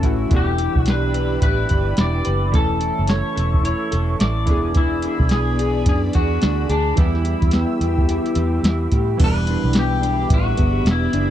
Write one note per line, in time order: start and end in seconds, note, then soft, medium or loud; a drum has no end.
0.00 0.26 A1 medium
0.00 0.03 E3 medium
0.00 0.31 E3 medium
0.00 0.28 E3 medium
0.00 0.04 A3 medium
0.00 0.38 A3 medium
0.00 0.31 A3 medium
0.00 0.04 C#4 medium
0.00 0.37 C#4 medium
0.00 0.58 E4 medium
0.00 0.30 A4 medium
0.00 0.34 A4 medium
0.00 0.30 E5 medium
0.00 0.30 C#6 medium
0.00 6.95 E6 medium
0.00 kick medium
0.00 closed hi-hat medium
0.04 0.32 C#4 medium
0.04 0.32 F#4 medium
0.29 0.67 E1 medium
0.29 1.94 E3 medium
0.29 2.51 E3 medium
0.29 1.95 B3 medium
0.29 1.96 D4 medium
0.29 2.52 G4 medium
0.29 2.52 D5 medium
0.29 2.52 B5 medium
0.29 kick loud
0.29 closed hi-hat medium
0.34 1.97 G4 medium
0.34 0.76 G4 medium
0.58 1.42 E4 medium
0.58 closed hi-hat medium
0.75 1.39 B1 medium
0.75 0.90 F#4 medium
0.75 kick medium
0.86 2.60 D4 medium
0.86 snare loud
0.86 closed hi-hat medium
0.90 1.42 B4 loud
1.14 1.69 B4 medium
1.14 closed hi-hat medium
1.42 1.65 A1 medium
1.42 1.97 E4 medium
1.42 2.00 B4 medium
1.42 kick medium
1.42 closed hi-hat medium
1.69 1.93 G1 medium
1.69 2.24 B4 medium
1.69 kick medium
1.69 closed hi-hat medium
1.97 2.21 E1 medium
1.97 2.50 E3 soft
1.97 2.54 B3 soft
1.97 2.55 D4 soft
1.97 2.79 E4 medium
1.97 2.55 G4 medium
1.97 2.51 D5 medium
1.97 snare loud
1.97 closed hi-hat medium
2.25 2.54 F#1 medium
2.25 2.60 B4 medium
2.25 closed hi-hat medium
2.52 2.89 E1 medium
2.52 4.43 E3 medium
2.52 4.46 E3 medium
2.52 4.44 A3 medium
2.52 4.45 C#4 medium
2.52 4.46 A4 medium
2.52 3.12 A4 loud
2.52 4.46 E5 medium
2.52 4.46 C#6 medium
2.52 kick loud
2.52 closed hi-hat medium
2.57 4.46 A4 medium
2.80 3.63 E4 medium
2.80 closed hi-hat medium
2.99 3.21 F#1 medium
3.07 3.64 C#5 loud
3.07 snare loud
3.07 closed hi-hat medium
3.36 3.73 E1 medium
3.36 3.90 A4 medium
3.36 closed hi-hat medium
3.54 kick medium
3.63 4.19 E4 medium
3.63 4.20 C#5 medium
3.63 closed hi-hat loud
3.91 4.15 E1 loud
3.91 4.54 A4 medium
3.91 closed hi-hat medium
4.19 4.47 A1 medium
4.19 5.07 E4 medium
4.19 4.78 D5 medium
4.19 snare loud
4.19 closed hi-hat medium
4.46 5.06 E1 medium
4.46 6.66 E3 medium
4.46 4.75 E3 medium
4.46 6.66 B3 medium
4.46 6.67 D4 medium
4.46 6.95 G#4 medium
4.46 6.96 D5 medium
4.46 9.16 B5 medium
4.46 kick medium
4.46 closed hi-hat medium
4.51 6.68 G#4 medium
4.75 6.96 E3 medium
4.75 5.28 E4 medium
4.75 kick loud
4.75 closed hi-hat medium
5.02 5.85 D4 medium
5.02 closed hi-hat medium
5.20 5.84 B1 medium
5.20 kick medium
5.29 7.53 B3 medium
5.29 5.88 G#4 medium
5.29 snare medium
5.29 closed hi-hat medium
5.59 6.12 G#4 medium
5.59 closed hi-hat medium
5.86 6.09 F#2 medium
5.86 6.41 D4 medium
5.86 5.96 G#4 medium
5.86 kick loud
5.86 closed hi-hat loud
6.13 6.37 E2 medium
6.13 6.70 F#4 medium
6.13 6.68 G#4 medium
6.13 kick medium
6.13 closed hi-hat medium
6.42 6.65 D2 medium
6.42 7.05 D4 medium
6.42 snare loud
6.42 closed hi-hat medium
6.69 6.92 D2 medium
6.69 6.97 D4 medium
6.69 7.04 G#4 medium
6.69 closed hi-hat medium
6.96 7.34 E2 medium
6.96 9.15 E3 medium
6.96 9.20 E3 medium
6.96 9.16 G3 medium
6.96 9.17 B3 medium
6.96 8.61 E4 medium
6.96 9.18 G4 medium
6.96 9.18 E5 medium
6.96 9.18 E6 medium
6.96 kick loud
6.96 closed hi-hat medium
7.00 9.17 G4 medium
7.15 snare soft
7.25 8.09 E4 medium
7.25 closed hi-hat medium
7.42 7.64 E2 medium
7.42 kick medium
7.42 closed hi-hat soft
7.51 9.74 B3 medium
7.51 snare loud
7.51 closed hi-hat medium
7.81 8.17 E2 medium
7.81 8.37 G4 medium
7.81 closed hi-hat medium
7.98 kick medium
8.09 8.64 E4 medium
8.09 closed hi-hat medium
8.26 closed hi-hat soft
8.35 8.59 E2 medium
8.35 8.92 G4 medium
8.35 closed hi-hat medium
8.63 8.86 E2 medium
8.63 9.48 E4 medium
8.63 snare loud
8.63 closed hi-hat medium
8.92 9.15 A2 medium
8.92 11.30 G4 medium
8.92 kick medium
8.92 closed hi-hat medium
9.17 9.56 E1 medium
9.17 11.30 E3 medium
9.17 11.30 B3 medium
9.17 11.30 D4 medium
9.17 11.30 E5 medium
9.17 11.30 B5 medium
9.17 11.30 D6 medium
9.17 kick loud
9.17 closed hi-hat medium
9.17 crash medium
9.22 11.30 G3 medium
9.22 9.79 B4 loud
9.47 10.02 D4 medium
9.47 closed hi-hat medium
9.64 10.28 B1 medium
9.73 10.57 B3 medium
9.73 snare loud
9.73 closed hi-hat medium
9.79 10.33 G4 medium
10.02 11.13 D4 medium
10.02 closed hi-hat medium
10.30 10.53 A1 medium
10.30 10.90 F#4 medium
10.30 kick loud
10.30 closed hi-hat loud
10.57 10.81 G1 medium
10.57 11.30 B3 medium
10.57 kick medium
10.57 closed hi-hat medium
10.85 11.08 E1 medium
10.85 snare loud
10.85 closed hi-hat medium
10.91 11.30 E4 medium
11.13 11.30 F#1 medium
11.13 11.30 D4 medium
11.13 closed hi-hat medium